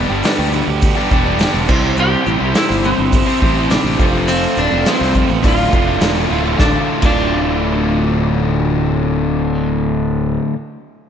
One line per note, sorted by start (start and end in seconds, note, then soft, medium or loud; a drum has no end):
0.00 0.23 G2 medium
0.00 0.24 D3 medium
0.00 0.12 G3 loud
0.00 0.24 G3 medium
0.00 0.11 B3 loud
0.00 0.13 B3 medium
0.00 0.24 B3 medium
0.00 0.13 D4 medium
0.00 0.24 D4 medium
0.00 0.13 G4 medium
0.00 0.25 G4 medium
0.00 0.14 B4 medium
0.09 0.22 G1 medium
0.09 0.26 G3 medium
0.09 0.26 B3 medium
0.09 0.26 D4 medium
0.09 0.28 G4 medium
0.23 0.82 G2 medium
0.23 0.83 D3 loud
0.23 0.51 G3 medium
0.23 1.17 B3 medium
0.23 0.52 B3 medium
0.23 1.17 D4 medium
0.23 1.17 G4 medium
0.23 1.17 B4 loud
0.23 snare loud
0.23 open hi-hat medium
0.23 shaker medium
0.27 0.54 D4 loud
0.27 0.55 G4 loud
0.38 0.61 D2 medium
0.38 0.51 G3 medium
0.38 0.52 B3 medium
0.38 0.53 D4 medium
0.38 0.53 G4 medium
0.52 0.69 G3 medium
0.52 0.68 B3 medium
0.52 0.67 D4 medium
0.52 0.66 G4 loud
0.52 muted overdriven electric guitar stroke soft
0.52 shaker medium
0.67 0.90 D2 medium
0.67 0.81 G3 medium
0.67 0.82 B3 medium
0.67 0.83 D4 medium
0.67 0.84 G4 medium
0.82 0.98 G3 medium
0.82 0.97 B3 medium
0.82 0.96 D4 medium
0.82 0.95 G4 medium
0.82 kick loud
0.82 open hi-hat medium
0.82 shaker medium
0.96 1.09 G3 medium
0.96 1.10 B3 medium
0.96 1.11 D4 medium
0.96 1.12 G4 medium
1.10 1.45 E1 medium
1.10 1.27 G3 medium
1.10 1.26 B3 medium
1.10 1.25 D4 medium
1.10 1.23 G4 medium
1.10 kick loud
1.10 shaker medium
1.24 1.39 G3 medium
1.24 1.40 B3 medium
1.24 1.41 D4 medium
1.24 1.41 G4 medium
1.39 1.66 G2 medium
1.39 1.67 D3 medium
1.39 1.67 G3 loud
1.39 1.68 B3 loud
1.39 1.68 D4 loud
1.39 1.68 G4 loud
1.39 snare loud
1.39 open hi-hat medium
1.39 shaker loud
1.54 1.66 E1 medium
1.54 1.67 G3 medium
1.54 1.68 B3 medium
1.54 1.67 D4 medium
1.54 1.67 G4 medium
1.68 2.14 C2 loud
1.68 1.96 C3 medium
1.68 1.96 G3 medium
1.68 2.38 C4 loud
1.68 1.84 C4 loud
1.68 2.38 E4 medium
1.68 1.83 E4 loud
1.68 2.38 G4 medium
1.68 1.82 G4 loud
1.68 2.38 C5 loud
1.68 1.81 C5 loud
1.68 kick loud
1.68 crash loud
1.68 shaker medium
1.82 1.97 C4 medium
1.82 1.98 E4 medium
1.82 1.98 G4 medium
1.82 1.99 C5 medium
1.97 2.54 C3 medium
1.97 2.54 G3 medium
1.97 2.42 C4 medium
1.97 2.41 E4 medium
1.97 2.40 G4 medium
1.97 2.39 C5 loud
1.97 shaker medium
2.24 2.38 A1 medium
2.24 2.54 C4 medium
2.24 2.55 E4 medium
2.24 2.56 G4 medium
2.24 2.56 C5 medium
2.24 shaker medium
2.40 2.52 C2 medium
2.40 2.55 C4 medium
2.40 2.56 E4 medium
2.40 2.56 G4 medium
2.40 2.57 C5 medium
2.54 3.13 C3 medium
2.54 3.13 G3 loud
2.54 3.47 C4 medium
2.54 2.82 C4 loud
2.54 3.47 E4 medium
2.54 2.83 E4 loud
2.54 3.47 G4 medium
2.54 2.84 G4 loud
2.54 3.47 C5 medium
2.54 snare loud
2.54 open hi-hat medium
2.54 shaker loud
2.58 2.85 C5 loud
2.69 2.93 G1 medium
2.69 2.83 C4 medium
2.69 2.83 E4 medium
2.69 2.84 G4 medium
2.69 2.84 C5 medium
2.69 snare soft
2.83 3.01 C4 medium
2.83 3.00 E4 medium
2.83 2.99 G4 medium
2.83 2.97 C5 medium
2.83 muted overdriven electric guitar stroke medium
2.83 shaker medium
2.98 3.21 G1 medium
2.98 3.11 C4 medium
2.98 3.13 E4 medium
2.98 3.14 G4 medium
2.98 3.15 C5 medium
3.12 3.29 C4 medium
3.12 3.28 E4 medium
3.12 3.27 G4 medium
3.12 3.25 C5 medium
3.12 kick loud
3.12 open hi-hat medium
3.12 shaker medium
3.26 3.41 C4 medium
3.26 3.42 E4 medium
3.26 3.43 G4 medium
3.26 3.44 C5 medium
3.42 3.76 A1 medium
3.42 3.58 C4 medium
3.42 3.58 E4 medium
3.42 3.56 G4 medium
3.42 3.55 C5 medium
3.42 kick loud
3.56 3.71 C4 medium
3.56 3.72 E4 medium
3.56 3.73 G4 medium
3.56 3.73 C5 medium
3.70 3.98 C3 loud
3.70 3.98 G3 medium
3.70 3.99 C4 loud
3.70 4.28 D4 medium
3.70 3.99 E4 loud
3.70 3.99 G4 loud
3.70 4.00 C5 loud
3.70 snare loud
3.70 open hi-hat medium
3.70 shaker loud
3.83 3.96 A1 loud
3.83 3.98 C4 medium
3.83 3.98 E4 medium
3.83 3.98 G4 medium
3.83 3.97 C5 medium
3.99 4.45 F1 loud
3.99 4.27 F2 loud
3.99 4.28 C3 medium
3.99 4.16 F3 loud
3.99 4.16 A3 medium
3.99 4.69 C4 medium
3.99 4.14 C4 medium
3.99 4.69 F4 medium
3.99 4.13 F4 medium
3.99 4.69 A4 medium
3.99 4.69 C5 medium
3.99 kick loud
3.99 shaker medium
4.14 4.29 F3 medium
4.14 4.30 A3 medium
4.14 4.31 C4 medium
4.14 4.31 F4 medium
4.28 4.85 F2 medium
4.28 4.86 C3 medium
4.28 4.75 F3 medium
4.28 4.73 A3 medium
4.28 open hi-hat medium
4.28 shaker loud
4.32 4.72 C4 loud
4.32 4.71 F4 loud
4.43 shaker soft
4.56 4.68 D1 loud
4.56 4.86 F3 medium
4.56 4.86 A3 medium
4.56 4.87 C4 medium
4.56 4.87 D4 medium
4.56 4.87 F4 medium
4.56 shaker medium
4.71 4.83 F1 medium
4.71 4.87 A3 medium
4.71 4.88 C4 medium
4.71 4.88 F4 medium
4.71 shaker soft
4.76 4.86 F3 medium
4.86 5.42 F2 medium
4.86 5.43 C3 loud
4.86 5.14 F3 medium
4.86 5.15 A3 loud
4.86 5.44 C4 medium
4.86 5.16 C4 loud
4.86 5.44 F4 medium
4.86 5.44 A4 medium
4.86 5.44 C5 medium
4.86 snare loud
4.86 open hi-hat medium
4.86 shaker loud
4.90 5.17 F4 loud
5.00 5.23 C2 loud
5.00 5.13 F3 medium
5.00 5.14 A3 medium
5.00 5.15 C4 medium
5.00 5.14 F4 medium
5.00 snare soft
5.14 5.31 F3 medium
5.14 5.30 A3 medium
5.14 5.29 C4 medium
5.14 muted overdriven electric guitar stroke soft
5.14 kick medium
5.14 shaker medium
5.18 5.27 F4 medium
5.28 5.41 A1 medium
5.28 5.43 F3 medium
5.28 5.43 A3 medium
5.28 5.46 B3 medium
5.28 5.42 C4 medium
5.28 5.42 F4 medium
5.28 shaker soft
5.43 5.67 D1 loud
5.43 5.87 D2 loud
5.43 5.71 A2 loud
5.43 5.60 D3 loud
5.43 5.58 A3 loud
5.43 6.37 D4 medium
5.43 6.37 F4 medium
5.43 5.56 F4 loud
5.43 6.37 A4 medium
5.43 6.37 D5 medium
5.43 kick loud
5.43 open hi-hat medium
5.43 shaker loud
5.57 5.72 D3 medium
5.57 5.73 A3 medium
5.57 5.74 F4 medium
5.72 5.99 F1 medium
5.72 6.01 A2 medium
5.72 5.88 D3 medium
5.72 5.87 A3 medium
5.72 5.85 F4 medium
5.72 kick loud
5.72 shaker medium
5.86 6.01 D3 medium
5.86 6.03 A3 medium
5.86 6.03 F4 medium
6.01 6.27 E1 medium
6.01 6.57 D2 medium
6.01 6.29 A2 loud
6.01 6.30 D3 loud
6.01 6.31 A3 medium
6.01 6.29 E4 medium
6.01 6.32 F4 loud
6.01 snare loud
6.01 open hi-hat medium
6.01 shaker loud
6.15 6.28 D3 medium
6.15 6.29 A3 medium
6.15 6.30 F4 medium
6.15 shaker soft
6.30 6.56 D1 medium
6.30 6.57 A2 medium
6.30 6.47 D3 medium
6.30 6.46 A3 medium
6.30 6.44 F4 medium
6.45 6.59 D3 medium
6.45 6.59 A3 medium
6.45 6.58 F4 medium
6.45 shaker soft
6.58 6.76 D1 loud
6.58 7.02 D2 medium
6.58 7.03 A2 medium
6.58 7.04 D3 loud
6.58 7.04 A3 medium
6.58 6.76 D4 medium
6.58 6.75 F4 medium
6.58 6.76 A4 medium
6.58 6.77 D5 loud
6.58 kick loud
6.58 snare loud
6.58 shaker medium
6.63 7.06 F4 loud
7.02 10.37 D1 medium
7.02 10.52 D2 loud
7.02 10.53 A2 loud
7.02 10.54 D3 loud
7.02 10.55 A3 loud
7.02 9.68 D4 loud
7.02 10.36 F4 medium
7.02 10.37 A4 medium
7.02 10.38 D5 loud
7.02 kick loud
7.02 crash medium
7.02 shaker medium
7.06 10.56 F4 loud